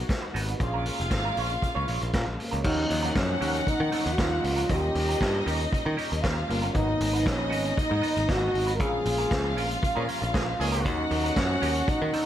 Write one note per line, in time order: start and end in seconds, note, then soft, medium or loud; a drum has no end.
0.00 0.55 B3 medium
0.00 0.56 D#4 medium
0.00 0.31 F#4 loud
0.00 0.56 F#4 medium
0.00 0.57 A#4 medium
0.00 0.31 F#5 medium
0.08 muted clean electric guitar stroke soft
0.08 kick loud
0.08 snare loud
0.08 closed hi-hat medium
0.22 muted clean electric guitar stroke soft
0.34 0.53 G#1 medium
0.34 0.48 B3 medium
0.34 0.48 D#4 medium
0.34 0.47 F#4 loud
0.34 0.47 B4 medium
0.34 open hi-hat medium
0.48 0.58 B3 soft
0.48 0.58 D#4 medium
0.48 0.58 F#4 medium
0.48 0.58 B4 medium
0.48 closed hi-hat soft
0.58 0.89 A#1 loud
0.58 2.60 A#3 medium
0.58 2.61 C#4 medium
0.58 2.36 F4 medium
0.58 2.61 F4 medium
0.58 2.62 G#4 medium
0.58 2.36 F5 loud
0.58 muted clean electric guitar stroke soft
0.58 kick loud
0.58 closed hi-hat medium
0.74 0.85 G#3 medium
0.74 0.86 C#4 medium
0.74 0.86 F4 medium
0.74 0.86 A#4 medium
0.86 0.97 G#3 medium
0.86 0.97 C#4 medium
0.86 0.97 F4 medium
0.86 0.98 A#4 medium
0.86 open hi-hat medium
1.00 1.08 F1 medium
1.00 muted clean electric guitar stroke soft
1.00 closed hi-hat soft
1.11 1.30 G#1 medium
1.11 muted clean electric guitar stroke soft
1.11 kick loud
1.11 snare medium
1.11 closed hi-hat medium
1.25 1.36 G#3 medium
1.25 1.37 C#4 medium
1.25 1.37 F4 medium
1.25 1.37 A#4 medium
1.37 1.56 A#1 medium
1.37 1.48 G#3 medium
1.37 1.48 C#4 medium
1.37 1.48 F4 medium
1.37 1.49 C#5 medium
1.37 open hi-hat medium
1.50 muted clean electric guitar stroke soft
1.50 closed hi-hat soft
1.62 muted clean electric guitar stroke soft
1.62 kick loud
1.62 closed hi-hat medium
1.75 1.85 C#2 medium
1.75 1.87 G#3 medium
1.75 1.87 C#4 medium
1.75 1.88 F4 medium
1.75 1.88 C#5 medium
1.88 1.98 A#1 medium
1.88 1.99 G#3 medium
1.88 1.99 C#4 medium
1.88 2.00 F4 medium
1.88 2.00 C#5 medium
1.88 open hi-hat medium
2.01 2.11 A#1 medium
2.01 muted clean electric guitar stroke soft
2.01 closed hi-hat soft
2.13 2.24 A#2 loud
2.13 2.27 G#3 medium
2.13 2.27 C#4 medium
2.13 2.26 F4 medium
2.13 2.25 A#4 medium
2.13 kick loud
2.13 snare loud
2.13 closed hi-hat medium
2.27 2.36 A#1 medium
2.27 muted clean electric guitar stroke soft
2.39 2.64 A#3 medium
2.39 muted clean electric guitar stroke soft
2.39 open hi-hat medium
2.51 2.62 C#2 medium
2.51 2.63 G#3 medium
2.51 2.63 C#4 medium
2.51 2.62 F4 medium
2.51 2.62 A#4 medium
2.51 closed hi-hat soft
2.63 2.84 D#2 loud
2.63 4.67 F3 medium
2.63 4.65 F#3 medium
2.63 2.78 A#3 medium
2.63 4.66 A#3 medium
2.63 2.78 C#4 medium
2.63 4.66 C#4 medium
2.63 4.66 D#4 medium
2.63 3.19 D#4 medium
2.63 2.77 F#4 medium
2.63 2.76 A#4 medium
2.63 4.66 F#5 medium
2.63 kick loud
2.63 crash loud
2.77 muted clean electric guitar stroke soft
2.89 3.09 D#2 loud
2.89 muted clean electric guitar stroke soft
2.89 open hi-hat medium
3.03 3.14 A#3 medium
3.03 3.14 C#4 medium
3.03 3.13 F#4 medium
3.03 3.13 A#4 medium
3.03 closed hi-hat soft
3.15 3.35 F#2 medium
3.15 3.70 C#4 medium
3.15 muted clean electric guitar stroke medium
3.15 kick loud
3.15 snare loud
3.15 closed hi-hat medium
3.28 muted clean electric guitar stroke medium
3.41 3.60 D#2 medium
3.41 3.55 A#3 medium
3.41 3.55 C#4 medium
3.41 3.54 F#4 medium
3.41 3.53 A#4 medium
3.41 open hi-hat medium
3.55 muted clean electric guitar stroke soft
3.55 closed hi-hat soft
3.67 4.15 D#4 loud
3.67 muted clean electric guitar stroke soft
3.67 muted picked electric bass stroke soft
3.67 kick loud
3.67 closed hi-hat medium
3.80 3.89 D#3 medium
3.80 muted clean electric guitar stroke medium
3.92 4.13 A#3 medium
3.92 4.06 C#4 medium
3.92 4.05 F#4 medium
3.92 4.04 A#4 loud
3.92 open hi-hat medium
4.05 4.15 D#2 loud
4.05 muted clean electric guitar stroke soft
4.05 closed hi-hat soft
4.13 4.22 F#4 medium
4.17 4.37 D#2 loud
4.17 4.32 A#3 medium
4.17 4.31 C#4 medium
4.17 4.71 F4 loud
4.17 4.30 F#4 medium
4.17 4.30 A#4 medium
4.17 kick loud
4.17 snare loud
4.17 closed hi-hat medium
4.31 muted clean electric guitar stroke soft
4.43 4.63 C#2 medium
4.43 muted clean electric guitar stroke soft
4.43 open hi-hat medium
4.56 4.68 A#3 medium
4.56 4.67 C#4 medium
4.56 4.67 F#4 medium
4.56 4.67 A#4 medium
4.56 closed hi-hat soft
4.69 4.89 D#2 loud
4.69 4.76 F3 medium
4.69 4.83 A#3 medium
4.69 6.45 A#3 medium
4.69 4.83 C#4 medium
4.69 6.46 C#4 medium
4.69 6.20 D#4 medium
4.69 6.46 F4 medium
4.69 4.82 G4 medium
4.69 5.69 G4 loud
4.69 4.81 A#4 medium
4.69 6.20 D#5 medium
4.69 kick loud
4.69 closed hi-hat medium
4.74 6.47 G3 medium
4.82 muted clean electric guitar stroke soft
4.95 5.14 D#2 medium
4.95 muted clean electric guitar stroke soft
4.95 open hi-hat medium
5.09 5.20 A#3 medium
5.09 5.19 C#4 medium
5.09 5.19 G4 medium
5.09 5.18 A#4 medium
5.09 closed hi-hat soft
5.21 5.40 G2 medium
5.21 muted clean electric guitar stroke soft
5.21 kick loud
5.21 snare loud
5.21 closed hi-hat medium
5.35 muted clean electric guitar stroke soft
5.46 5.65 D#2 loud
5.46 5.60 A#3 medium
5.46 5.60 C#4 medium
5.46 5.60 G4 medium
5.46 5.59 A#4 loud
5.46 open hi-hat medium
5.60 muted clean electric guitar stroke soft
5.60 closed hi-hat soft
5.72 muted clean electric guitar stroke soft
5.72 muted picked electric bass stroke soft
5.72 kick loud
5.72 closed hi-hat medium
5.85 5.95 D#3 loud
5.85 muted clean electric guitar stroke medium
5.97 6.11 A#3 medium
5.97 6.12 C#4 medium
5.97 6.12 G4 medium
5.97 6.11 A#4 medium
5.97 open hi-hat medium
6.12 6.21 D#2 medium
6.12 muted clean electric guitar stroke medium
6.12 closed hi-hat soft
6.23 6.43 D#2 loud
6.23 6.37 A#3 medium
6.23 6.38 C#4 medium
6.23 6.73 F4 medium
6.23 6.37 G4 medium
6.23 6.36 A#4 medium
6.23 6.73 F5 medium
6.23 kick loud
6.23 snare loud
6.23 closed hi-hat medium
6.37 muted clean electric guitar stroke soft
6.49 6.68 G1 medium
6.49 6.75 G3 medium
6.49 6.73 A#3 soft
6.49 6.62 A#3 medium
6.49 6.75 C#4 soft
6.49 6.75 F4 medium
6.49 muted clean electric guitar stroke medium
6.49 open hi-hat medium
6.62 6.73 A#3 medium
6.62 6.73 C#4 medium
6.62 6.72 G4 medium
6.62 6.72 A#4 medium
6.62 closed hi-hat medium
6.73 6.94 G#1 loud
6.73 8.75 F#3 medium
6.73 8.76 A#3 medium
6.73 6.89 B3 medium
6.73 8.76 B3 medium
6.73 8.76 D#4 medium
6.73 6.88 D#4 medium
6.73 8.77 D#4 medium
6.73 6.88 F#4 medium
6.73 6.87 B4 medium
6.73 8.76 D#5 loud
6.73 kick loud
6.73 closed hi-hat medium
6.77 7.30 D#4 loud
6.88 muted clean electric guitar stroke medium
7.00 7.26 G#1 loud
7.00 muted clean electric guitar stroke soft
7.00 open hi-hat medium
7.13 7.24 B3 medium
7.13 7.24 D#4 medium
7.13 7.24 F#4 medium
7.13 7.23 B4 medium
7.13 closed hi-hat soft
7.26 7.52 A#1 medium
7.26 7.81 C#4 medium
7.26 muted clean electric guitar stroke soft
7.26 kick loud
7.26 snare loud
7.26 closed hi-hat medium
7.38 muted clean electric guitar stroke medium
7.50 7.71 G#1 loud
7.50 7.65 B3 medium
7.50 7.65 D#4 loud
7.50 7.64 F#4 loud
7.50 7.63 B4 loud
7.50 open hi-hat medium
7.64 muted clean electric guitar stroke soft
7.64 closed hi-hat soft
7.77 8.32 D#4 loud
7.77 muted clean electric guitar stroke soft
7.77 muted picked electric bass stroke medium
7.77 kick loud
7.77 closed hi-hat medium
7.90 8.00 G#2 medium
7.90 muted clean electric guitar stroke soft
8.02 8.16 B3 medium
8.02 8.16 D#4 medium
8.02 8.15 F#4 medium
8.02 8.14 B4 medium
8.02 open hi-hat medium
8.15 8.26 G#1 loud
8.15 muted clean electric guitar stroke medium
8.15 closed hi-hat soft
8.28 8.48 G#1 loud
8.28 8.49 B3 medium
8.28 8.42 D#4 medium
8.28 8.41 F#4 loud
8.28 8.75 F#4 loud
8.28 8.40 B4 medium
8.28 kick loud
8.28 snare loud
8.28 closed hi-hat medium
8.42 muted clean electric guitar stroke medium
8.53 8.80 G#1 medium
8.53 muted clean electric guitar stroke soft
8.53 open hi-hat medium
8.67 8.78 B3 medium
8.67 8.78 D#4 medium
8.67 8.77 F#4 medium
8.67 8.77 B4 medium
8.67 closed hi-hat medium
8.75 10.80 F3 medium
8.75 8.93 G#3 medium
8.75 10.81 G#3 medium
8.75 8.93 C#4 medium
8.75 8.84 A#4 medium
8.79 8.99 A#1 loud
8.79 10.81 A#3 medium
8.79 10.82 C#4 medium
8.79 10.81 F4 medium
8.79 8.92 F4 medium
8.79 9.84 G#4 loud
8.79 8.92 A#4 medium
8.79 10.81 F5 medium
8.79 kick loud
8.79 closed hi-hat medium
8.93 muted clean electric guitar stroke soft
9.05 9.25 A#1 loud
9.05 muted clean electric guitar stroke soft
9.05 open hi-hat medium
9.18 9.29 G#3 soft
9.18 9.29 C#4 medium
9.18 9.29 F4 medium
9.18 9.28 A#4 medium
9.18 closed hi-hat soft
9.31 9.57 C#2 medium
9.31 muted clean electric guitar stroke soft
9.31 kick loud
9.31 snare loud
9.31 closed hi-hat medium
9.44 muted clean electric guitar stroke medium
9.57 9.76 A#1 loud
9.57 9.71 G#3 medium
9.57 9.70 C#4 medium
9.57 9.69 F4 loud
9.57 9.69 A#4 loud
9.57 open hi-hat medium
9.70 muted clean electric guitar stroke medium
9.70 closed hi-hat soft
9.82 muted clean electric guitar stroke soft
9.82 muted picked electric bass stroke medium
9.82 kick loud
9.82 closed hi-hat medium
9.95 10.05 A#2 medium
9.95 10.04 F3 medium
9.95 10.06 G#3 medium
9.95 10.04 C#4 medium
9.95 10.06 C#4 medium
9.95 10.06 F4 medium
9.95 10.04 G#4 medium
9.95 10.06 A#4 medium
10.07 10.22 G#3 medium
10.07 10.21 C#4 medium
10.07 10.20 F4 medium
10.07 10.20 A#4 loud
10.07 open hi-hat medium
10.21 10.31 A#1 medium
10.21 muted clean electric guitar stroke medium
10.21 closed hi-hat soft
10.33 10.53 A#1 medium
10.33 10.43 F3 medium
10.33 10.47 G#3 medium
10.33 10.47 C#4 medium
10.33 10.43 C#4 medium
10.33 10.46 F4 medium
10.33 10.43 G#4 medium
10.33 10.46 A#4 medium
10.33 kick loud
10.33 snare loud
10.33 closed hi-hat medium
10.47 muted clean electric guitar stroke soft
10.59 10.85 C#2 medium
10.59 10.93 D#3 loud
10.59 10.88 A#3 medium
10.59 10.93 C#4 loud
10.59 10.93 G#4 loud
10.59 muted clean electric guitar stroke soft
10.59 open hi-hat medium
10.72 10.83 G#3 soft
10.72 10.83 C#4 medium
10.72 10.83 F4 medium
10.72 10.82 A#4 medium
10.72 closed hi-hat medium
10.84 11.04 D#2 loud
10.84 12.26 D#3 medium
10.84 10.99 F#3 medium
10.84 12.26 F#3 medium
10.84 12.26 A#3 medium
10.84 10.99 C#4 medium
10.84 12.26 C#4 medium
10.84 10.98 D#4 medium
10.84 11.40 D#4 medium
10.84 12.26 F#4 medium
10.84 10.98 A#4 medium
10.84 12.26 F#5 loud
10.84 kick loud
10.84 closed hi-hat medium
10.99 muted clean electric guitar stroke soft
11.11 11.30 D#2 loud
11.11 muted clean electric guitar stroke soft
11.11 open hi-hat medium
11.24 11.35 F#3 medium
11.24 11.35 C#4 medium
11.24 11.34 D#4 medium
11.24 11.34 A#4 medium
11.24 closed hi-hat soft
11.36 11.55 F#2 medium
11.36 11.91 C#4 medium
11.36 muted clean electric guitar stroke soft
11.36 kick loud
11.36 snare loud
11.36 closed hi-hat medium
11.50 muted clean electric guitar stroke soft
11.62 11.81 D#2 medium
11.62 11.76 F#3 medium
11.62 11.76 C#4 medium
11.62 11.75 D#4 medium
11.62 11.74 A#4 loud
11.62 open hi-hat medium
11.75 muted clean electric guitar stroke soft
11.75 closed hi-hat soft
11.88 12.26 D#4 loud
11.88 muted picked electric bass stroke soft
11.88 muted clean electric guitar stroke soft
11.88 kick loud
11.88 closed hi-hat medium
12.02 12.11 D#3 medium
12.02 muted clean electric guitar stroke soft
12.13 12.26 F#3 medium
12.13 12.26 C#4 medium
12.13 12.26 D#4 loud
12.13 12.26 A#4 medium
12.13 open hi-hat medium